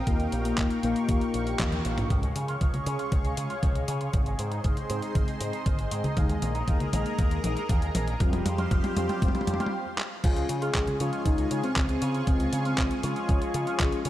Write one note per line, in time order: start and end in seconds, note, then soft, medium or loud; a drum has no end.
0.00 2.06 A#4 medium
0.00 2.06 F5 medium
0.00 2.06 G5 medium
0.07 0.27 D#2 medium
0.07 0.39 A#3 medium
0.07 0.80 A#3 medium
0.07 0.80 D#4 medium
0.07 0.80 F4 medium
0.07 0.80 G4 medium
0.07 2.08 C#6 medium
0.07 kick loud
0.07 closed hi-hat medium
0.20 closed hi-hat soft
0.32 0.52 A#1 medium
0.32 closed hi-hat medium
0.45 0.77 A#3 loud
0.45 closed hi-hat medium
0.58 0.68 D#2 medium
0.58 kick loud
0.58 clap loud
0.58 closed hi-hat medium
0.70 closed hi-hat soft
0.83 0.93 A#1 medium
0.83 1.82 A#3 loud
0.83 2.00 A#3 loud
0.83 1.82 D#4 medium
0.83 1.82 F4 medium
0.83 1.82 G4 loud
0.83 closed hi-hat medium
0.96 closed hi-hat medium
1.09 1.18 D#2 medium
1.09 kick loud
1.09 closed hi-hat medium
1.21 closed hi-hat soft
1.34 1.54 A#1 medium
1.34 closed hi-hat medium
1.47 closed hi-hat soft
1.59 1.79 D#2 medium
1.59 kick loud
1.59 clap loud
1.59 closed hi-hat medium
1.59 high tom medium
1.72 closed hi-hat soft
1.72 high tom medium
1.85 2.05 A#1 loud
1.85 2.07 A#3 medium
1.85 2.07 D#4 medium
1.85 2.07 F4 medium
1.85 2.07 G4 medium
1.85 closed hi-hat medium
1.98 closed hi-hat medium
1.98 mid tom medium
2.10 2.30 C#2 medium
2.10 2.17 F3 medium
2.10 2.84 G#3 medium
2.10 2.84 C#4 medium
2.10 2.84 F4 medium
2.10 2.84 G#4 loud
2.10 6.13 G#4 medium
2.10 4.12 C#5 medium
2.10 4.12 F5 medium
2.10 4.12 C#6 medium
2.10 kick loud
2.10 closed hi-hat medium
2.10 mid tom soft
2.23 2.35 G#3 medium
2.23 closed hi-hat soft
2.36 2.55 C#3 medium
2.36 2.47 C#4 medium
2.36 closed hi-hat medium
2.48 2.55 F4 loud
2.48 closed hi-hat soft
2.61 2.71 C#2 medium
2.61 2.72 F3 loud
2.61 kick loud
2.61 closed hi-hat medium
2.61 mid tom soft
2.74 2.85 G#3 medium
2.74 closed hi-hat soft
2.74 high conga medium
2.86 2.96 C#3 medium
2.86 3.34 G#3 loud
2.86 3.34 C#4 medium
2.86 2.98 C#4 loud
2.86 3.34 F4 medium
2.86 3.34 G#4 loud
2.86 closed hi-hat medium
2.99 3.11 F4 medium
2.99 closed hi-hat soft
3.12 3.32 C#2 medium
3.12 3.19 F3 medium
3.12 kick loud
3.12 closed hi-hat medium
3.12 mid tom medium
3.25 3.37 G#3 medium
3.25 closed hi-hat soft
3.37 3.47 C#3 medium
3.37 3.55 G#3 medium
3.37 3.48 C#4 medium
3.37 3.55 C#4 medium
3.37 3.55 F4 medium
3.37 3.55 G#4 loud
3.37 closed hi-hat loud
3.50 3.57 F4 loud
3.50 closed hi-hat soft
3.63 3.83 C#2 medium
3.63 3.74 F3 loud
3.63 kick loud
3.63 closed hi-hat medium
3.63 mid tom medium
3.75 3.87 G#3 medium
3.75 closed hi-hat soft
3.88 4.08 C#3 loud
3.88 3.99 C#4 loud
3.88 closed hi-hat loud
4.01 4.13 F4 medium
4.01 closed hi-hat soft
4.13 4.33 G#1 loud
4.13 4.20 D#3 medium
4.13 4.87 G#3 medium
4.13 4.87 C4 medium
4.13 4.87 D#4 medium
4.13 4.87 G#4 medium
4.13 6.15 C5 medium
4.13 8.16 D#5 medium
4.13 6.15 C6 medium
4.13 kick loud
4.13 closed hi-hat medium
4.13 mid tom medium
4.26 4.38 G#3 medium
4.26 closed hi-hat soft
4.39 4.59 G#2 medium
4.39 4.50 C4 medium
4.39 closed hi-hat medium
4.52 4.58 D#4 loud
4.52 closed hi-hat soft
4.64 4.74 G#1 medium
4.64 4.75 D#3 loud
4.64 kick loud
4.64 closed hi-hat medium
4.64 mid tom medium
4.77 4.88 G#3 medium
4.77 closed hi-hat soft
4.90 5.00 G#2 medium
4.90 5.89 G#3 loud
4.90 5.01 C4 loud
4.90 5.89 C4 medium
4.90 5.89 D#4 medium
4.90 5.89 G#4 loud
4.90 closed hi-hat medium
5.02 5.15 D#4 medium
5.02 closed hi-hat soft
5.15 5.25 G#1 medium
5.15 5.22 D#3 medium
5.15 kick loud
5.15 closed hi-hat medium
5.15 mid tom medium
5.28 5.40 G#3 medium
5.28 closed hi-hat soft
5.41 5.51 G#2 medium
5.41 5.52 C4 medium
5.41 closed hi-hat medium
5.53 5.60 D#4 loud
5.53 closed hi-hat soft
5.66 5.86 G#1 medium
5.66 5.77 D#3 loud
5.66 kick loud
5.66 closed hi-hat medium
5.66 mid tom medium
5.79 5.90 G#3 medium
5.79 closed hi-hat soft
5.91 6.01 G#2 medium
5.91 6.14 G#3 medium
5.91 6.03 C4 loud
5.91 6.14 C4 medium
5.91 6.14 D#4 medium
5.91 6.14 G#4 medium
5.91 closed hi-hat loud
6.04 6.16 D#4 medium
6.04 closed hi-hat soft
6.04 high conga medium
6.17 6.37 D#2 medium
6.17 6.24 D#3 medium
6.17 6.90 G#3 medium
6.17 6.90 A#3 medium
6.17 6.90 D#4 medium
6.17 8.18 G#4 medium
6.17 6.90 G#4 loud
6.17 8.18 A#4 medium
6.17 8.18 A#5 medium
6.17 kick loud
6.17 closed hi-hat medium
6.17 mid tom medium
6.29 6.42 G#3 medium
6.29 closed hi-hat soft
6.42 6.62 A#1 medium
6.42 6.54 A#3 medium
6.42 closed hi-hat medium
6.42 mid tom medium
6.55 6.62 D#4 medium
6.55 closed hi-hat soft
6.68 6.78 D#2 medium
6.68 6.79 D#3 loud
6.68 kick loud
6.68 closed hi-hat medium
6.68 mid tom medium
6.80 6.92 G#3 medium
6.80 closed hi-hat soft
6.80 high conga medium
6.93 7.03 A#1 medium
6.93 7.41 G#3 loud
6.93 7.41 A#3 medium
6.93 7.04 A#3 loud
6.93 7.41 D#4 medium
6.93 7.41 G#4 loud
6.93 closed hi-hat medium
6.93 mid tom medium
7.06 7.18 D#4 medium
7.06 closed hi-hat soft
7.19 7.38 D#2 medium
7.19 7.25 D#3 medium
7.19 kick loud
7.19 closed hi-hat medium
7.19 mid tom medium
7.31 7.44 G#3 medium
7.31 closed hi-hat soft
7.44 7.54 A#1 medium
7.44 7.62 G#3 medium
7.44 7.55 A#3 medium
7.44 7.62 A#3 medium
7.44 7.62 D#4 medium
7.44 7.62 G#4 loud
7.44 closed hi-hat medium
7.44 mid tom medium
7.57 7.64 D#4 loud
7.57 closed hi-hat soft
7.69 7.89 D#2 loud
7.69 7.81 D#3 medium
7.69 kick loud
7.69 closed hi-hat medium
7.69 mid tom medium
7.82 7.93 G#3 medium
7.82 closed hi-hat soft
7.95 8.15 A#1 loud
7.95 8.06 A#3 loud
7.95 closed hi-hat loud
7.95 mid tom medium
8.08 8.20 D#4 medium
8.08 closed hi-hat soft
8.20 8.40 F1 medium
8.20 8.27 F3 medium
8.20 8.94 G3 medium
8.20 8.94 C4 medium
8.20 8.94 F4 medium
8.20 9.71 G4 medium
8.20 8.94 G4 medium
8.20 9.71 C5 medium
8.20 9.71 F5 medium
8.20 9.71 C6 medium
8.20 kick loud
8.20 closed hi-hat medium
8.20 mid tom medium
8.33 8.45 G3 medium
8.33 closed hi-hat soft
8.33 mid tom medium
8.46 8.66 F2 loud
8.46 8.57 C4 medium
8.46 closed hi-hat medium
8.46 mid tom medium
8.58 8.65 F4 loud
8.58 closed hi-hat soft
8.58 mid tom medium
8.71 8.81 F1 medium
8.71 8.82 F3 loud
8.71 kick loud
8.71 closed hi-hat medium
8.71 mid tom medium
8.84 8.95 G3 medium
8.84 closed hi-hat soft
8.84 mid tom medium
8.96 9.07 F2 medium
8.96 9.73 G3 loud
8.96 9.08 C4 loud
8.96 9.73 C4 medium
8.96 9.73 F4 medium
8.96 9.73 G4 loud
8.96 closed hi-hat medium
8.96 mid tom medium
9.09 9.21 F4 medium
9.09 closed hi-hat soft
9.09 mid tom medium
9.22 9.32 F1 loud
9.22 9.29 F3 medium
9.22 kick loud
9.22 closed hi-hat medium
9.22 mid tom loud
9.28 mid tom medium
9.35 9.47 G3 medium
9.35 closed hi-hat soft
9.35 mid tom medium
9.41 mid tom medium
9.47 9.57 F2 medium
9.47 9.59 C4 medium
9.47 closed hi-hat medium
9.47 mid tom loud
9.54 mid tom medium
9.60 9.67 F4 loud
9.60 closed hi-hat soft
9.60 mid tom medium
9.66 mid tom medium
9.98 clap loud
10.24 10.44 C#2 loud
10.24 10.30 F3 medium
10.24 10.97 G#3 medium
10.24 10.97 C#4 medium
10.24 14.10 F4 medium
10.24 10.97 F4 medium
10.24 10.56 F4 medium
10.24 10.97 G#4 loud
10.24 14.10 G#4 medium
10.24 14.10 G#5 medium
10.24 14.10 C#6 medium
10.24 kick loud
10.24 closed hi-hat medium
10.24 crash loud
10.37 10.49 G#3 medium
10.37 closed hi-hat soft
10.49 10.69 C#3 loud
10.49 10.60 C#4 medium
10.49 closed hi-hat loud
10.62 10.69 F4 loud
10.62 10.95 G#4 loud
10.62 closed hi-hat soft
10.75 10.85 C#2 medium
10.75 10.86 F3 loud
10.75 kick loud
10.75 clap loud
10.75 closed hi-hat medium
10.87 10.99 G#3 medium
10.87 closed hi-hat soft
10.87 high conga medium
11.00 11.10 C#3 medium
11.00 11.48 G#3 loud
11.00 11.11 C#4 loud
11.00 11.48 C#4 medium
11.00 11.48 F4 medium
11.00 11.22 F4 medium
11.00 11.48 G#4 loud
11.00 closed hi-hat medium
11.13 11.25 F4 medium
11.13 closed hi-hat soft
11.25 11.45 C#2 medium
11.25 11.32 F3 medium
11.25 11.58 D#4 loud
11.25 kick loud
11.25 closed hi-hat medium
11.38 11.50 G#3 medium
11.38 closed hi-hat soft
11.51 11.61 C#3 medium
11.51 11.68 G#3 loud
11.51 11.62 C#4 medium
11.51 11.68 C#4 medium
11.51 11.68 F4 medium
11.51 11.68 G#4 loud
11.51 closed hi-hat loud
11.64 11.85 C4 medium
11.64 11.70 F4 loud
11.64 closed hi-hat soft
11.76 11.96 C#2 loud
11.76 11.87 F3 loud
11.76 kick loud
11.76 clap loud
11.76 closed hi-hat medium
11.89 12.00 G#3 medium
11.89 12.22 C4 loud
11.89 closed hi-hat soft
12.02 12.22 C#3 loud
12.02 12.13 C#4 loud
12.02 closed hi-hat loud
12.14 12.27 F4 medium
12.14 closed hi-hat soft
12.27 12.47 C#2 loud
12.27 13.00 C#3 medium
12.27 12.34 F3 medium
12.27 13.00 G#3 medium
12.27 12.60 C4 loud
12.27 13.00 F4 medium
12.27 13.00 G#4 medium
12.27 kick loud
12.27 closed hi-hat medium
12.40 12.52 G#3 medium
12.40 closed hi-hat soft
12.52 12.72 C#3 loud
12.52 12.64 C#4 medium
12.52 closed hi-hat medium
12.65 12.98 C4 loud
12.65 12.72 F4 loud
12.65 closed hi-hat soft
12.78 12.88 C#2 medium
12.78 12.89 F3 loud
12.78 kick loud
12.78 clap loud
12.78 closed hi-hat medium
12.91 13.02 G#3 medium
12.91 closed hi-hat soft
13.03 13.13 C#3 loud
13.03 14.02 G#3 loud
13.03 14.02 C#4 medium
13.03 13.15 C#4 loud
13.03 14.10 F4 loud
13.03 14.02 F4 medium
13.03 14.02 G#4 loud
13.03 closed hi-hat medium
13.16 13.28 F4 medium
13.16 closed hi-hat soft
13.29 13.39 C#2 medium
13.29 13.36 F3 medium
13.29 kick loud
13.29 closed hi-hat medium
13.42 13.54 G#3 medium
13.42 closed hi-hat soft
13.54 13.64 C#3 loud
13.54 13.65 C#4 medium
13.54 closed hi-hat loud
13.67 13.74 F4 loud
13.67 closed hi-hat soft
13.80 13.90 C#2 loud
13.80 13.91 F3 loud
13.80 kick loud
13.80 clap loud
13.80 closed hi-hat medium
13.92 14.04 G#3 medium
13.92 closed hi-hat soft
14.05 14.10 C#3 medium
14.05 14.10 G#3 medium
14.05 14.10 C#4 medium
14.05 14.10 C#4 loud
14.05 14.10 F4 medium
14.05 14.10 G#4 medium
14.05 closed hi-hat loud